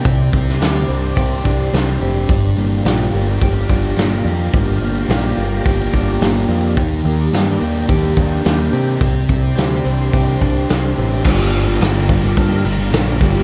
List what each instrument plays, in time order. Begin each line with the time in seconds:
Already playing: clean electric guitar G3 G4, distorted electric guitar G4, string machine D5
0.04 picked electric bass C2, distorted electric guitar C3, clean electric guitar C3, string machine G4 C5 C6, kick, open hi-hat
0.32 picked electric bass C2, distorted electric guitar C4, kick
0.49 snare
0.61 picked electric bass D2, clean electric guitar G3, distorted electric guitar G4, snare, open hi-hat
0.88 picked electric bass C2, clean electric guitar C4, distorted electric guitar D4
1.15 picked electric bass C2, clean electric guitar G4, distorted electric guitar G4, kick, open hi-hat
1.44 picked electric bass C2, clean electric guitar D4, distorted electric guitar D4, kick
1.72 picked electric bass C2, clean electric guitar G3, distorted electric guitar C4, snare, open hi-hat
2.01 picked electric bass F1, clean electric guitar C4, distorted electric guitar G4
2.28 picked electric bass G1, clean electric guitar G2, distorted electric guitar G2, string machine F5 A#5, kick, open hi-hat
2.57 picked electric bass G1, distorted electric guitar A#3
2.85 picked electric bass A#1, clean electric guitar F3, distorted electric guitar G4, snare, open hi-hat
3.13 picked electric bass G1, clean electric guitar A#3, distorted electric guitar F4
3.40 picked electric bass G1, clean electric guitar G4, distorted electric guitar G4, kick, open hi-hat
3.69 picked electric bass G1, clean electric guitar D4, distorted electric guitar F4, kick
3.96 picked electric bass G1, clean electric guitar F3, distorted electric guitar A#3, snare, open hi-hat
4.25 picked electric bass F2, clean electric guitar A#3, distorted electric guitar G4
4.53 picked electric bass G1, clean electric guitar G2, distorted electric guitar G2, kick, open hi-hat
4.81 picked electric bass G1, distorted electric guitar A#3
5.08 picked electric bass A#1, clean electric guitar F3, distorted electric guitar G4, snare, open hi-hat
5.37 picked electric bass G1, clean electric guitar A#3, distorted electric guitar F4
5.65 picked electric bass G1, clean electric guitar G4, distorted electric guitar G4, kick, open hi-hat
5.93 picked electric bass G1, clean electric guitar D4, distorted electric guitar F4, kick
6.20 picked electric bass G1, clean electric guitar F3, distorted electric guitar A#3, snare, open hi-hat
6.48 picked electric bass F2, clean electric guitar A#3, distorted electric guitar G4
6.75 picked electric bass D#2, clean electric guitar D#3, distorted electric guitar D#3, string machine D5 G5, kick, open hi-hat
7.05 picked electric bass D#2, distorted electric guitar A#3
7.32 picked electric bass G2, clean electric guitar G3, distorted electric guitar G4, snare, open hi-hat
7.60 picked electric bass D#2, clean electric guitar A#3, distorted electric guitar D4
7.88 picked electric bass D#2, clean electric guitar G4, distorted electric guitar G4, kick, open hi-hat
8.17 picked electric bass D#2, clean electric guitar D4, distorted electric guitar D4, kick
8.44 picked electric bass D#2, clean electric guitar G3, distorted electric guitar A#3, snare, open hi-hat
8.72 picked electric bass C3, clean electric guitar A#3, distorted electric guitar G4
9.00 picked electric bass C2, distorted electric guitar C3, clean electric guitar C3, string machine C5 D5 C6, kick, open hi-hat
9.29 picked electric bass C2, distorted electric guitar C4, kick
9.57 picked electric bass D2, clean electric guitar G3, distorted electric guitar G4, snare, open hi-hat
9.84 picked electric bass C2, clean electric guitar C4, distorted electric guitar D4
10.12 picked electric bass C2, distorted electric guitar G4, clean electric guitar G4, kick, open hi-hat
10.40 picked electric bass C2, distorted electric guitar D4, clean electric guitar D4, kick
10.69 picked electric bass C2, clean electric guitar G3, distorted electric guitar C4, snare, open hi-hat
10.96 picked electric bass A1, clean electric guitar C4, distorted electric guitar G4
11.24 picked electric bass G1, distorted electric guitar G2 D3 G3, clean electric guitar G2 D3 F3 A#3 F4 G4, string machine G4 D5 F5 A#5, kick, crash
11.38 distorted electric guitar D3 G3
11.52 clean electric guitar F3 A#3 F4 G4, crash
11.66 distorted electric guitar D3 G3
11.80 picked electric bass G1, distorted electric guitar G2 D3 G3, clean electric guitar G2 D3 F3 A#3 F4 G4, snare, crash
11.94 clean electric guitar F3 A#3 F4 G4
12.08 distorted electric guitar G2 D3 G3, clean electric guitar F3 A#3 F4 G4, kick, crash
12.22 distorted electric guitar D3 G3, clean electric guitar F3 A#3 F4 G4
12.37 picked electric bass G2, kick, crash
12.50 distorted electric guitar D3 G3, clean electric guitar F3 A#3 F4 G4
12.64 picked electric bass G1, distorted electric guitar G2 D3 G3, muted clean electric guitar stroke, crash
12.78 distorted electric guitar D3 G3
12.91 picked electric bass A#1, distorted electric guitar G2 D3 G3, clean electric guitar G2 D3 F3 A#3 F4 G4, snare, crash
13.06 clean electric guitar F3 A#3 F4 G4
13.20 picked electric bass G1, distorted electric guitar G2 D3 G3, clean electric guitar F3 A#3 F4 G4, kick, crash
13.33 distorted electric guitar D3 G3, clean electric guitar A#3 F4 G4
13.37 clean electric guitar F3